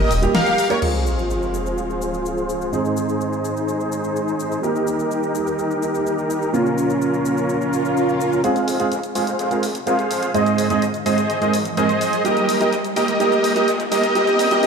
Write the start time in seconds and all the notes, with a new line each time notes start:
0.00 G4 A#4 D#5
0.11 D#1, open hi-hat, shaker
0.22 G3 A#3 D#4 G4, closed hi-hat, shaker
0.35 G4 A#4 F5, snare, closed hi-hat, ride, shaker
0.46 closed hi-hat, shaker
0.58 open hi-hat, shaker
0.70 G3 A#3 D#4 G4 A#4 C#5, closed hi-hat, shaker
0.81 G#3 C4 F4 G#4 C5, crash, sub drop, shaker
0.95 shaker
1.07 shaker
1.18 shaker
1.30 shaker
1.42 shaker
1.54 shaker
1.66 shaker
1.78 shaker
1.90 shaker
2.02 shaker
2.14 shaker
2.26 shaker
2.38 shaker
2.49 shaker
2.61 shaker
2.71 G#2 G#3 C4 D#4 G#4 C5, shaker
2.85 shaker
2.97 shaker
3.09 shaker
3.21 shaker
3.33 shaker
3.45 shaker
3.57 shaker
3.69 shaker
3.80 shaker
3.92 shaker
4.04 shaker
4.16 shaker
4.28 shaker
4.40 shaker
4.52 shaker
4.62 G3 A#3 D#4 G4 A#4, shaker
4.76 shaker
4.87 shaker
4.99 shaker
5.11 shaker
5.23 shaker
5.35 shaker
5.47 shaker
5.59 shaker
5.71 shaker
5.83 shaker
5.95 shaker
6.07 shaker
6.18 shaker
6.30 shaker
6.42 shaker
6.52 A#2 F3 A#3 C#4 F4 A#4, shaker
6.66 shaker
6.78 shaker
6.90 shaker
7.02 shaker
7.14 shaker
7.26 shaker
7.38 shaker
7.49 swell, shaker
7.61 shaker
7.73 shaker
7.85 shaker
7.97 shaker
8.09 shaker
8.21 shaker
8.33 shaker
8.43 F1 G#3 C4 F4 G#4 F5, closed hi-hat, riser, shaker
8.56 closed hi-hat, shaker
8.68 F1, open hi-hat, shaker
8.79 G#3 C4 F4 G#4 C5 F5, closed hi-hat, shaker
8.92 F1, closed hi-hat, shaker
9.03 closed hi-hat, shaker
9.15 F1 G#3 C4 F4 G#4 C5 F5, open hi-hat, shaker
9.27 closed hi-hat, shaker
9.39 F1, closed hi-hat, shaker
9.50 G#3 C4 F4 G#4 A#4 C5 F5, closed hi-hat, shaker
9.63 F1, open hi-hat, shaker
9.75 closed hi-hat, shaker
9.86 C2 G#3 C4 F4 G#4 A#4 C5 F5, closed hi-hat, shaker
9.99 closed hi-hat, shaker
10.11 F2, open hi-hat, shaker
10.23 closed hi-hat, shaker
10.34 G#1 G#2 G#3 C4 D#4 G#4 C5 D#5, closed hi-hat, shaker
10.46 closed hi-hat, shaker
10.58 G#1, open hi-hat, shaker
10.70 G#2 G#3 C4 D#4 G#4 C5 D#5, closed hi-hat, shaker
10.82 G#1, closed hi-hat, shaker
10.94 closed hi-hat, shaker
11.05 G#1 G#2 G#3 C4 D#4 G#4 C5 D#5, open hi-hat, shaker
11.18 closed hi-hat, shaker
11.30 G#1, closed hi-hat, shaker
11.41 G#2 G#3 C4 D#4 G#4 A#4 C5 D#5, closed hi-hat, shaker
11.54 G#1, open hi-hat, shaker
11.65 closed hi-hat, shaker
11.77 D#2 G#2 G#3 C4 D#4 G#4 A#4 C5 D#5, closed hi-hat, shaker
11.89 closed hi-hat, shaker
12.01 G#2, open hi-hat, shaker
12.13 closed hi-hat, shaker
12.24 D#1 G3 A#3 D#4 G4 A#4 D#5, closed hi-hat, shaker
12.37 closed hi-hat, shaker
12.49 D#1, open hi-hat, shaker
12.60 G3 A#3 D#4 G4 A#4 D#5, closed hi-hat, shaker
12.73 D#1, closed hi-hat, shaker
12.84 closed hi-hat, shaker
12.96 D#1 G3 A#3 D#4 G4 A#4 D#5, open hi-hat, shaker
13.08 closed hi-hat, shaker
13.20 D#1 G3 A#3 D#4 G4 A#4 D#5, closed hi-hat, shaker
13.32 closed hi-hat, shaker
13.44 D#1, open hi-hat, shaker
13.55 G3 A#3 D#4 G4 A#4 D#5, closed hi-hat, shaker
13.68 A#1, closed hi-hat, shaker
13.80 closed hi-hat, shaker
13.91 D#2 G3 A#3 D#4 G4 A#4 D#5, open hi-hat, shaker
14.04 closed hi-hat, shaker
14.15 A#1 G3 A#3 D#4 G4 A#4 D#5, closed hi-hat, shaker
14.27 closed hi-hat, shaker
14.39 A#1, open hi-hat, shaker
14.51 G3 A#3 D#4 G4 A#4 D#5, closed hi-hat, shaker
14.62 A#1 G3 A#3 D#4 G4 A#4 D#5, closed hi-hat, shaker